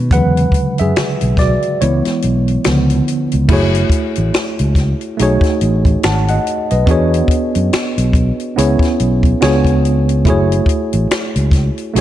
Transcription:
Already playing: D#3 G#3 A3 C#4 D#4 B4
0.11 E2 C#3 D3 F#3 G#3 B4 F#5, kick, closed hi-hat
0.37 closed hi-hat
0.52 kick, closed hi-hat
0.78 F#2 G#4 E5, closed hi-hat
0.96 finger snap, muted fingered electric bass stroke, snare, closed hi-hat
1.21 B1, closed hi-hat
1.37 F#4 D5, kick, snare, closed hi-hat
1.62 closed hi-hat
1.81 C#2 E3 G#3 B3 E4 C#5, closed hi-hat
2.05 muted fingered electric bass stroke, snare, closed hi-hat
2.22 B1, closed hi-hat
2.48 closed hi-hat
2.64 C#2 D3 F3 B3, finger snap, snare, closed hi-hat
2.90 closed hi-hat
3.08 closed hi-hat
3.31 C#2, closed hi-hat
3.48 F#1 A3 E4 F#4 G#4, kick, crash
3.53 C#5
3.75 closed hi-hat
3.90 kick, closed hi-hat
4.15 A1, closed hi-hat
4.34 finger snap, muted fingered electric bass stroke, snare, closed hi-hat
4.59 C#2, closed hi-hat
4.75 kick, snare, closed hi-hat
5.01 closed hi-hat
5.17 B1 A3 D#4 F#4, closed hi-hat
5.22 G#4 C#5
5.41 muted fingered electric bass stroke, kick, snare, closed hi-hat
5.61 A1, closed hi-hat
5.85 kick, closed hi-hat
6.03 G#1 F#5 A5, finger snap, snare, closed hi-hat
6.28 D#5 F#5, closed hi-hat
6.47 closed hi-hat
6.71 B1 B4 D#5, closed hi-hat
6.86 E2 B3 D4 F#4, kick, closed hi-hat
6.90 G#4 C#5
7.14 closed hi-hat
7.28 kick, closed hi-hat
7.55 F#2, closed hi-hat
7.73 finger snap, muted fingered electric bass stroke, snare, closed hi-hat
7.98 B1, closed hi-hat
8.13 kick, closed hi-hat
8.40 closed hi-hat
8.56 C#2 B3 C#4 E4 G#4 C#5, closed hi-hat
8.79 muted fingered electric bass stroke, kick, closed hi-hat
8.84 snare
9.00 B1, closed hi-hat
9.23 kick, closed hi-hat
9.41 C#2 B3 D4 F4 G#4 C#5, finger snap, snare, closed hi-hat
9.64 kick, closed hi-hat
9.85 closed hi-hat
10.09 closed hi-hat
10.25 F#1 A3 E4 F#4 G#4, kick, closed hi-hat
10.30 C#5
10.52 closed hi-hat
10.66 kick, closed hi-hat
10.93 A1, closed hi-hat
11.11 finger snap, muted fingered electric bass stroke, snare, closed hi-hat
11.36 C#2, closed hi-hat
11.51 kick, snare, closed hi-hat
11.78 closed hi-hat
11.94 B1 A3 D#4 F#4 G#4, closed hi-hat

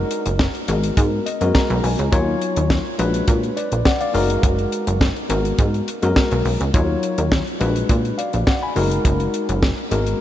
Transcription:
Already playing: G#3 D#4 F#4 A#4
0.11 closed hi-hat
0.26 F#1, closed hi-hat
0.39 kick, snare
0.55 closed hi-hat
0.68 G#1 G#3 B3 F#4 A#4, closed hi-hat
0.83 closed hi-hat
0.97 G#2, kick, closed hi-hat
1.26 D#5, closed hi-hat
1.41 F#2 G#3 B3 F#4 A#4, closed hi-hat
1.55 A#5, kick, snare
1.70 B1, closed hi-hat
1.84 B1 G#5, open hi-hat
1.99 C#2, closed hi-hat
2.12 D#2 F#3 D#4 F4 C#5, kick, closed hi-hat
2.42 closed hi-hat
2.56 D#2, closed hi-hat
2.70 kick, snare
2.98 A#1 G#3 D4 F#4 B4, closed hi-hat
3.14 closed hi-hat
3.28 A#2, kick, closed hi-hat
3.43 closed hi-hat
3.57 B4 D5, closed hi-hat
3.72 A#1, closed hi-hat
3.85 D5 F#5, kick, snare
4.01 D5 F5, closed hi-hat
4.14 F#1 G#3 D#4 F#4 A#4, open hi-hat
4.30 closed hi-hat
4.43 F#1, kick, closed hi-hat
4.59 closed hi-hat
4.72 closed hi-hat
4.87 F#1, closed hi-hat
5.01 kick, snare
5.16 closed hi-hat
5.29 G#1 G#3 B3 F#4 A#4, closed hi-hat
5.45 closed hi-hat
5.58 G#2, kick, closed hi-hat
5.74 closed hi-hat
5.88 closed hi-hat
6.02 F#2 G#3 B3 F#4 A#4, closed hi-hat
6.16 kick, snare
6.31 B1, closed hi-hat
6.45 B1, open hi-hat
6.61 C#2, closed hi-hat
6.74 D#2 F#3 D#4 F4 C#5, kick, closed hi-hat
7.03 closed hi-hat
7.18 D#2, closed hi-hat
7.32 kick, snare
7.47 closed hi-hat
7.60 A#1 G#3 D4 F#4 B4, closed hi-hat
7.76 closed hi-hat
7.89 A#2, kick, closed hi-hat
8.05 closed hi-hat
8.18 D5 F5, closed hi-hat
8.33 A#1, closed hi-hat
8.47 D5 F#5, kick, snare
8.63 G#5 B5
8.76 F#1 G#3 D#4 F#4 A#4, open hi-hat
8.91 closed hi-hat
9.05 F#1, kick, closed hi-hat
9.20 closed hi-hat
9.34 closed hi-hat
9.49 F#1, closed hi-hat
9.63 kick, snare
9.91 G#1 G#3 B3 F#4 A#4, closed hi-hat
10.06 closed hi-hat

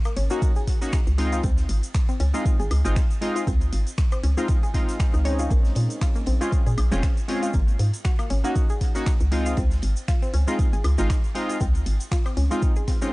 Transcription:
0.05 A#3, closed hi-hat, high woodblock, shaker
0.17 G#1 C#4, open hi-hat, ride
0.30 A#3 C#4 D#4 F#4, closed hi-hat, shaker
0.42 kick, closed hi-hat, ride, shaker
0.56 G#4, closed hi-hat, shaker
0.67 kick, snare, open hi-hat, ride
0.81 A#3 C#4 D#4 F#4, snare, closed hi-hat, shaker
0.92 finger snap, kick, snare, closed hi-hat, ride, shaker
1.07 C#2, closed hi-hat, shaker
1.18 G#3 C4 D#4 F4, open hi-hat, ride
1.32 F4, closed hi-hat, shaker
1.43 C#2 C4, kick, closed hi-hat, ride, shaker
1.58 snare, closed hi-hat, shaker
1.69 G#1, open hi-hat, ride
1.83 closed hi-hat, shaker
1.94 finger snap, kick, snare, closed hi-hat, ride, shaker
2.09 C4, closed hi-hat, shaker
2.20 C#2 C#4, open hi-hat, ride
2.34 G#3 C4 D#4 F4, closed hi-hat, shaker
2.45 kick, closed hi-hat, ride, shaker
2.60 G#1 G#4, closed hi-hat, ride, shaker
2.71 C#2, open hi-hat, ride, high woodblock
2.85 G#1 G#3 C4 D#4 F4, closed hi-hat, shaker
2.96 finger snap, kick, snare, closed hi-hat, ride, shaker
3.11 closed hi-hat, shaker
3.21 G#3 C4 D#4 F4, open hi-hat, ride
3.36 F4, closed hi-hat, shaker
3.47 C#2 C4, kick, closed hi-hat, ride, shaker
3.61 closed hi-hat, shaker
3.73 G#1, open hi-hat, ride
3.87 closed hi-hat, shaker
3.98 finger snap, kick, snare, closed hi-hat, ride, shaker
4.12 C4, closed hi-hat, high woodblock, shaker
4.23 C#2 C#4, open hi-hat, ride
4.37 G#3 C4 D#4 F4, closed hi-hat, shaker
4.48 kick, closed hi-hat, ride, shaker
4.63 G#4, closed hi-hat, shaker
4.74 G#3 C4 D#4 F4, kick, snare, open hi-hat, ride
4.89 snare, closed hi-hat, shaker
4.99 finger snap, kick, snare, closed hi-hat, ride, shaker
5.14 C#2 D#4, closed hi-hat, shaker
5.24 G#3 C4 C#4 D#4 C#5, open hi-hat, ride
5.39 F4, closed hi-hat, shaker
5.51 A#1 A#3, kick, closed hi-hat, ride, shaker
5.65 snare, closed hi-hat, shaker
5.75 A#2, open hi-hat, ride
5.90 closed hi-hat, shaker
6.01 F4, finger snap, kick, snare, closed hi-hat, ride, shaker
6.15 A#3, closed hi-hat, shaker
6.26 A#1 C4, open hi-hat, ride
6.41 G#3 C4 C#4 F4, closed hi-hat, shaker
6.52 kick, closed hi-hat, ride, shaker
6.66 A#2 G#4, closed hi-hat, ride, shaker
6.78 A#1, open hi-hat, ride, high woodblock
6.91 F1 G#3 C4 C#4 F4, closed hi-hat, shaker
7.03 finger snap, kick, snare, closed hi-hat, ride, shaker
7.17 closed hi-hat, shaker
7.28 G#3 C4 C#4 F4, open hi-hat, ride
7.43 F4, closed hi-hat, shaker
7.53 G#1 A#3, kick, closed hi-hat, ride, shaker
7.68 closed hi-hat, shaker
7.79 G#2, open hi-hat, ride
7.94 closed hi-hat, shaker
8.04 F#4, finger snap, kick, snare, closed hi-hat, ride, shaker
8.19 A#3, closed hi-hat, high woodblock, shaker
8.30 G#1 C#4, open hi-hat, ride
8.44 A#3 C#4 D#4 F#4, closed hi-hat, shaker
8.56 kick, closed hi-hat, ride, shaker
8.69 G#4, closed hi-hat, shaker
8.81 kick, snare, open hi-hat, ride
8.95 A#3 C#4 D#4 F#4, snare, closed hi-hat, shaker
9.06 finger snap, kick, snare, closed hi-hat, ride, shaker
9.20 C#2, closed hi-hat, shaker
9.31 G#3 C4 D#4 F4, open hi-hat, ride
9.46 F4, closed hi-hat, shaker
9.57 C#2 C4, kick, closed hi-hat, ride, shaker
9.71 snare, closed hi-hat, shaker
9.82 G#1, open hi-hat, ride
9.96 closed hi-hat, shaker
10.08 F4, finger snap, kick, snare, closed hi-hat, ride, shaker
10.22 C4, closed hi-hat, shaker
10.34 C#2 C#4, open hi-hat, ride
10.47 G#3 C4 D#4 F4, closed hi-hat, shaker
10.59 kick, closed hi-hat, ride, shaker
10.73 G#1 G#4, closed hi-hat, ride, shaker
10.84 C#2, open hi-hat, ride, high woodblock
10.98 G#1 G#3 C4 D#4 F4, closed hi-hat, shaker
11.10 finger snap, kick, snare, closed hi-hat, ride, shaker
11.24 closed hi-hat, shaker
11.35 G#3 C4 D#4 F4, open hi-hat, ride
11.49 F4, closed hi-hat, shaker
11.60 C#2 C4, kick, closed hi-hat, ride, shaker
11.75 closed hi-hat, shaker
11.86 G#1, open hi-hat, ride
12.00 closed hi-hat, shaker
12.11 F4, finger snap, kick, snare, closed hi-hat, shaker
12.26 C4, closed hi-hat, high woodblock, shaker
12.37 C#2 C#4, open hi-hat, ride
12.51 G#3 C4 D#4 F4, closed hi-hat, shaker
12.62 kick, closed hi-hat, ride, shaker
12.76 G#4, closed hi-hat, shaker
12.87 C4, kick, snare, open hi-hat, ride
13.02 G#3 C4 C#4 D#4 F4, closed hi-hat, shaker

